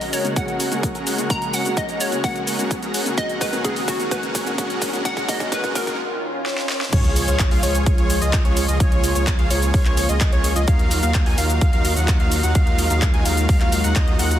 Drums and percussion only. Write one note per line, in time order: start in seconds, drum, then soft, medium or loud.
0.01 open hi-hat medium
0.01 shaker soft
0.13 open hi-hat loud
0.13 shaker medium
0.25 closed hi-hat soft
0.25 shaker soft
0.36 kick loud
0.36 closed hi-hat medium
0.36 shaker soft
0.48 closed hi-hat soft
0.48 shaker soft
0.60 open hi-hat loud
0.60 shaker medium
0.72 closed hi-hat soft
0.72 shaker soft
0.83 kick loud
0.83 closed hi-hat medium
0.83 shaker soft
0.95 closed hi-hat soft
0.95 shaker soft
1.07 open hi-hat loud
1.07 shaker medium
1.18 closed hi-hat soft
1.18 shaker soft
1.30 kick loud
1.30 closed hi-hat medium
1.30 shaker soft
1.42 closed hi-hat soft
1.42 shaker soft
1.54 open hi-hat loud
1.54 shaker medium
1.65 closed hi-hat soft
1.65 shaker soft
1.77 kick loud
1.77 closed hi-hat medium
1.77 shaker soft
1.89 closed hi-hat soft
1.89 shaker soft
2.00 open hi-hat loud
2.00 shaker medium
2.12 closed hi-hat soft
2.12 shaker soft
2.24 kick loud
2.24 open hi-hat medium
2.24 shaker soft
2.36 closed hi-hat soft
2.36 shaker soft
2.47 open hi-hat loud
2.47 shaker medium
2.59 closed hi-hat soft
2.59 shaker soft
2.71 kick loud
2.71 closed hi-hat medium
2.71 shaker soft
2.83 closed hi-hat soft
2.83 shaker soft
2.94 open hi-hat loud
2.94 shaker medium
3.06 closed hi-hat soft
3.06 shaker soft
3.18 kick loud
3.18 closed hi-hat loud
3.18 shaker soft
3.29 closed hi-hat soft
3.29 shaker soft
3.41 kick loud
3.41 open hi-hat loud
3.41 shaker medium
3.53 closed hi-hat soft
3.53 shaker soft
3.64 kick loud
3.64 closed hi-hat medium
3.64 shaker soft
3.76 open hi-hat medium
3.76 shaker soft
3.88 kick loud
3.88 open hi-hat loud
3.88 shaker medium
4.00 closed hi-hat soft
4.00 shaker soft
4.11 kick loud
4.11 closed hi-hat loud
4.11 shaker soft
4.23 closed hi-hat soft
4.23 shaker soft
4.35 kick loud
4.35 open hi-hat loud
4.35 shaker medium
4.47 closed hi-hat soft
4.47 shaker soft
4.58 kick loud
4.58 closed hi-hat medium
4.58 shaker soft
4.70 closed hi-hat soft
4.70 shaker soft
4.82 kick loud
4.82 open hi-hat loud
4.82 shaker medium
4.93 closed hi-hat soft
4.93 shaker soft
5.05 kick loud
5.05 closed hi-hat loud
5.05 shaker soft
5.17 kick medium
5.17 closed hi-hat soft
5.17 shaker soft
5.29 kick loud
5.29 open hi-hat loud
5.29 shaker medium
5.40 kick medium
5.40 closed hi-hat soft
5.40 shaker soft
5.52 kick loud
5.52 closed hi-hat loud
5.52 shaker soft
5.64 kick medium
5.64 closed hi-hat soft
5.64 shaker soft
5.75 kick loud
5.75 open hi-hat loud
5.75 shaker medium
5.87 kick medium
5.87 closed hi-hat soft
5.87 shaker soft
6.46 snare medium
6.58 snare medium
6.69 snare medium
6.81 snare medium
6.93 kick loud
6.93 closed hi-hat loud
6.93 crash loud
6.93 shaker soft
7.04 closed hi-hat soft
7.16 open hi-hat loud
7.16 shaker medium
7.28 closed hi-hat soft
7.28 shaker soft
7.39 kick loud
7.39 clap loud
7.39 closed hi-hat loud
7.39 shaker soft
7.51 open hi-hat medium
7.63 open hi-hat loud
7.63 shaker medium
7.75 closed hi-hat soft
7.75 shaker soft
7.86 kick loud
7.86 closed hi-hat loud
7.86 shaker soft
7.98 closed hi-hat soft
8.10 open hi-hat loud
8.10 shaker medium
8.22 closed hi-hat soft
8.22 shaker soft
8.33 kick loud
8.33 clap loud
8.33 closed hi-hat loud
8.33 shaker soft
8.45 closed hi-hat soft
8.57 open hi-hat loud
8.57 shaker medium
8.68 closed hi-hat soft
8.68 shaker soft
8.80 kick loud
8.80 closed hi-hat loud
8.80 shaker soft
8.92 closed hi-hat soft
9.04 open hi-hat loud
9.04 shaker medium
9.15 closed hi-hat soft
9.15 shaker soft
9.27 kick loud
9.27 clap loud
9.27 closed hi-hat loud
9.27 shaker soft
9.39 closed hi-hat soft
9.51 open hi-hat loud
9.51 shaker medium
9.62 closed hi-hat soft
9.62 shaker soft
9.74 kick loud
9.74 open hi-hat medium
9.74 shaker soft
9.85 clap soft
9.85 closed hi-hat soft
9.97 open hi-hat loud
9.97 shaker medium
10.09 closed hi-hat soft
10.09 shaker soft
10.21 kick loud
10.21 clap loud
10.21 closed hi-hat loud
10.21 shaker soft
10.32 closed hi-hat soft
10.44 open hi-hat loud
10.44 shaker medium
10.56 closed hi-hat soft
10.56 shaker soft
10.68 kick loud
10.68 closed hi-hat medium
10.68 shaker soft
10.79 closed hi-hat soft
10.91 open hi-hat loud
10.91 shaker medium
11.03 closed hi-hat soft
11.03 shaker soft
11.14 kick loud
11.14 clap loud
11.14 closed hi-hat medium
11.14 shaker soft
11.26 open hi-hat medium
11.38 open hi-hat loud
11.38 shaker medium
11.50 closed hi-hat soft
11.50 shaker soft
11.61 kick loud
11.61 closed hi-hat medium
11.61 shaker soft
11.73 closed hi-hat soft
11.85 open hi-hat loud
11.85 shaker medium
11.96 closed hi-hat soft
11.96 shaker soft
12.08 kick loud
12.08 clap loud
12.08 closed hi-hat medium
12.08 shaker soft
12.20 closed hi-hat soft
12.32 open hi-hat loud
12.32 shaker medium
12.43 closed hi-hat soft
12.43 shaker soft
12.55 kick loud
12.55 closed hi-hat medium
12.55 shaker soft
12.67 closed hi-hat soft
12.79 open hi-hat loud
12.79 shaker medium
12.90 closed hi-hat soft
12.90 shaker soft
13.02 kick loud
13.02 clap loud
13.02 closed hi-hat medium
13.02 shaker soft
13.14 closed hi-hat soft
13.25 open hi-hat loud
13.25 shaker medium
13.37 closed hi-hat soft
13.37 shaker soft
13.49 kick loud
13.49 open hi-hat medium
13.49 shaker soft
13.61 clap soft
13.61 closed hi-hat soft
13.72 open hi-hat loud
13.72 shaker medium
13.84 closed hi-hat soft
13.84 shaker soft
13.96 kick loud
13.96 clap loud
13.96 closed hi-hat medium
13.96 shaker soft
14.08 closed hi-hat soft
14.19 open hi-hat loud
14.19 shaker medium
14.31 closed hi-hat soft
14.31 shaker soft